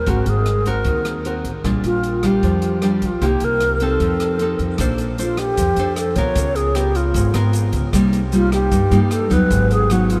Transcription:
Already playing: alto flute A#4
0.06 upright bass G#1, nylon-string guitar G#3 C4 F#4 A#4, alto flute F#4, kick, closed hi-hat
0.26 upright bass G#1, alto flute G#4, closed hi-hat
0.46 cross-stick, closed hi-hat
0.66 nylon-string guitar C4 F#4 A#4, alto flute A#4, kick, closed hi-hat
0.84 upright bass D#2, nylon-string guitar D#3, kick, closed hi-hat
1.05 cross-stick, closed hi-hat
1.25 nylon-string guitar C4 F#4 A#4, closed hi-hat
1.44 upright bass A1, kick, closed hi-hat
1.64 upright bass A#1, nylon-string guitar A#2 G3 D4 F4, kick, cross-stick, closed hi-hat
1.84 upright bass A#1, alto flute F4, closed hi-hat
2.03 closed hi-hat
2.23 nylon-string guitar G3 D4 F4, kick, cross-stick, closed hi-hat
2.27 alto flute G4
2.43 upright bass F2, nylon-string guitar F3, kick, closed hi-hat
2.62 closed hi-hat
2.82 nylon-string guitar G3 D4 F4, cross-stick, closed hi-hat
3.02 upright bass A#1, alto flute F4, kick, closed hi-hat
3.21 upright bass C2, nylon-string guitar C3 A#3 D#4 G4, kick, closed hi-hat
3.26 alto flute G4
3.40 upright bass C2, closed hi-hat
3.44 alto flute A#4
3.60 cross-stick, closed hi-hat
3.80 nylon-string guitar C4 D#4 A4, alto flute A4, kick, closed hi-hat
4.00 upright bass F2, nylon-string guitar F3, kick, closed hi-hat
4.20 cross-stick, closed hi-hat
4.39 nylon-string guitar C4 D#4 A4, closed hi-hat
4.59 upright bass F2, kick, closed hi-hat
4.78 upright bass A#1, nylon-string guitar A#3 D4 A4 C5, kick, cross-stick, closed hi-hat, shaker
4.98 closed hi-hat, shaker
5.18 nylon-string guitar D4 A4 C5, alto flute F4, closed hi-hat, shaker
5.37 alto flute G4, cross-stick, closed hi-hat, shaker
5.57 upright bass F2, nylon-string guitar F3, kick, closed hi-hat, shaker
5.76 upright bass F2, nylon-string guitar D4 A4 C5, closed hi-hat, shaker
5.96 alto flute A4, cross-stick, closed hi-hat, shaker
6.16 upright bass A#1, nylon-string guitar B3 F4 A#4, alto flute C#5, kick, closed hi-hat, shaker
6.35 upright bass C#2, nylon-string guitar C#3, kick, closed hi-hat, shaker
6.56 alto flute G#4, closed hi-hat, shaker
6.75 nylon-string guitar B3 F4 A#4, alto flute G4, cross-stick, closed hi-hat, shaker
6.95 alto flute F4, closed hi-hat, shaker
7.14 upright bass G#1, nylon-string guitar G#2, kick, closed hi-hat, shaker
7.34 upright bass G#1, nylon-string guitar B3 F4 A#4, cross-stick, closed hi-hat, shaker
7.53 closed hi-hat, shaker
7.73 upright bass C#2, kick, closed hi-hat, shaker
7.93 upright bass C2, nylon-string guitar C3 G3 A#3 D#4, kick, cross-stick, closed hi-hat, shaker
8.13 closed hi-hat, shaker
8.32 nylon-string guitar G3 A#3 D#4, alto flute F4, closed hi-hat, shaker
8.52 alto flute G4, cross-stick, closed hi-hat, shaker
8.72 upright bass G2, nylon-string guitar G2, kick, closed hi-hat, shaker
8.91 upright bass G2, nylon-string guitar G3 A#3 D#4, closed hi-hat, shaker
9.11 alto flute A4, cross-stick, closed hi-hat, shaker
9.30 upright bass D#2, nylon-string guitar F#3 B3 D#4, alto flute B4, kick, closed hi-hat, shaker
9.50 upright bass G#1, nylon-string guitar G#2, kick, closed hi-hat, shaker
9.71 alto flute G#4, closed hi-hat, shaker
9.90 nylon-string guitar F#3 B3 D#4, alto flute F#4, cross-stick, closed hi-hat, shaker
10.10 alto flute F4, closed hi-hat, shaker

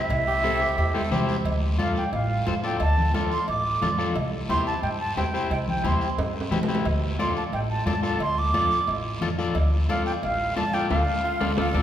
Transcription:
Already playing: flute E5
0.10 upright bass C2, cowbell, long guiro
0.27 tenor saxophone G4
0.43 clean electric guitar E4 G4 C5, tenor saxophone A4, high conga, short guiro
0.61 tenor saxophone G4, short guiro
0.77 upright bass E2, tenor saxophone G4, cowbell, long guiro
0.94 clean electric guitar E4 G4 C5, tenor saxophone A4, high conga
1.11 upright bass C2, clean electric guitar E4 G4 C5, tenor saxophone G4, high conga, low conga, low timbale, short guiro
1.29 short guiro
1.45 upright bass D2, cowbell, high conga, long guiro
1.78 upright bass F2, clean electric guitar F4 A4 D5, flute F5, cowbell, high conga, short guiro
1.96 flute G5, short guiro
2.13 upright bass A1, flute F5, cowbell, high conga, long guiro
2.47 upright bass F2, clean electric guitar F4 A4 C5, cowbell, high conga, low timbale, short guiro
2.63 clean electric guitar F4 A4 D5, flute G5, short guiro
2.80 upright bass D2, flute A5, cowbell, high conga, long guiro
2.97 low conga
3.14 upright bass F2, clean electric guitar F4 A4 D5, cowbell, high conga, short guiro
3.32 flute C6, short guiro
3.48 upright bass A1, flute D6, cowbell, high conga, long guiro
3.81 upright bass F2, clean electric guitar F4 A4 D5, cowbell, high conga, low conga, short guiro
3.98 clean electric guitar F4 A4 D5, short guiro
4.15 upright bass C2, cowbell, high conga, long guiro
4.49 upright bass E2, clean electric guitar E4 G4 C5, flute C6, cowbell, high conga, short guiro
4.67 flute A5, short guiro
4.83 upright bass G2, flute G5, cowbell, high conga, long guiro
5.00 flute A5
5.17 upright bass E2, clean electric guitar E4 G4 C5, flute G5, cowbell, high conga, low timbale, short guiro
5.34 clean electric guitar E4 G4 C5, short guiro
5.50 upright bass C2, flute G5, cowbell, high conga, long guiro
5.68 flute G5, low conga
5.84 upright bass E2, clean electric guitar E4 G4 C5, flute C6, cowbell, high conga, short guiro
6.01 short guiro
6.18 upright bass G2, cowbell, high conga, high timbale, long guiro
6.41 high timbale
6.51 upright bass C2, clean electric guitar E4 G4 C5, cowbell, high conga, low conga, low timbale, short guiro
6.63 low timbale
6.68 clean electric guitar E4 G4 C5, short guiro
6.75 low timbale
6.85 upright bass D2, cowbell, high conga, long guiro
7.19 upright bass F2, clean electric guitar F4 A4 D5, flute C6, cowbell, high conga, short guiro
7.36 flute A5, short guiro
7.52 upright bass A1, flute G5, cowbell, high conga, long guiro
7.70 flute A5
7.86 upright bass F2, clean electric guitar F4 A4 D5, flute A5, cowbell, high conga, low timbale, short guiro
8.03 clean electric guitar F4 A4 D5, flute A5, short guiro
8.19 upright bass D2, flute C6, cowbell, high conga, long guiro
8.39 flute D6
8.53 upright bass F2, clean electric guitar F4 A4 D5, cowbell, high conga, short guiro
8.71 short guiro
8.87 upright bass A1, cowbell, high conga, long guiro
9.21 upright bass F2, clean electric guitar F4 A4 D5, cowbell, high conga, low conga, short guiro
9.38 clean electric guitar F4 A4 D5, short guiro
9.55 upright bass D2, cowbell, high conga, long guiro
9.89 upright bass F2, clean electric guitar F4 A4 D5, flute F5, cowbell, high conga, short guiro
10.06 flute G5, short guiro
10.23 upright bass A1, flute F5, cowbell, high conga, long guiro
10.56 upright bass F2, clean electric guitar F4 A4 D5, flute A5, cowbell, high conga, short guiro
10.73 clean electric guitar F4 A4 D5, flute G5, short guiro
10.90 upright bass D2, clean electric guitar F4 A4 D5, flute F5, high conga, high timbale, long guiro
11.24 tenor saxophone F4
11.40 upright bass D2, clean electric guitar F4 A4 D5, high conga, high timbale, long guiro
11.57 upright bass D2, clean electric guitar F4 A4 D5, tenor saxophone A4, high conga, high timbale, long guiro
11.74 upright bass D2, clean electric guitar F4 A4 D5, high conga, high timbale, long guiro

